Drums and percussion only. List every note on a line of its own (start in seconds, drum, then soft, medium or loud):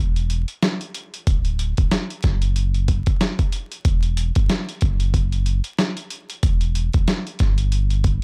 0.16 closed hi-hat soft
0.30 closed hi-hat medium
0.48 closed hi-hat medium
0.63 snare loud
0.63 closed hi-hat medium
0.81 closed hi-hat medium
0.94 closed hi-hat medium
1.14 closed hi-hat medium
1.27 kick loud
1.27 closed hi-hat loud
1.45 closed hi-hat medium
1.59 closed hi-hat medium
1.77 kick loud
1.77 closed hi-hat medium
1.91 snare loud
1.91 closed hi-hat loud
2.10 closed hi-hat medium
2.23 kick loud
2.23 snare soft
2.23 closed hi-hat medium
2.42 closed hi-hat medium
2.56 closed hi-hat medium
2.74 closed hi-hat soft
2.88 kick loud
2.88 closed hi-hat medium
3.06 kick loud
3.06 closed hi-hat medium
3.21 snare loud
3.21 closed hi-hat medium
3.39 kick medium
3.39 closed hi-hat medium
3.52 closed hi-hat medium
3.72 closed hi-hat medium
3.85 kick loud
3.85 closed hi-hat loud
4.03 closed hi-hat medium
4.17 closed hi-hat medium
4.35 kick loud
4.35 closed hi-hat medium
4.49 snare loud
4.49 closed hi-hat medium
4.69 closed hi-hat medium
4.81 kick loud
4.81 closed hi-hat medium
5.00 closed hi-hat medium
5.14 kick medium
5.14 closed hi-hat medium
5.32 closed hi-hat soft
5.46 closed hi-hat medium
5.64 closed hi-hat medium
5.79 snare loud
5.79 closed hi-hat medium
5.97 closed hi-hat medium
6.11 closed hi-hat medium
6.30 closed hi-hat medium
6.43 kick loud
6.43 closed hi-hat loud
6.61 closed hi-hat medium
6.75 closed hi-hat medium
6.93 kick loud
6.93 closed hi-hat medium
7.08 snare loud
7.08 closed hi-hat medium
7.27 closed hi-hat medium
7.39 kick loud
7.39 snare soft
7.39 closed hi-hat medium
7.58 closed hi-hat medium
7.72 closed hi-hat medium
7.90 closed hi-hat soft
8.04 kick loud
8.04 closed hi-hat medium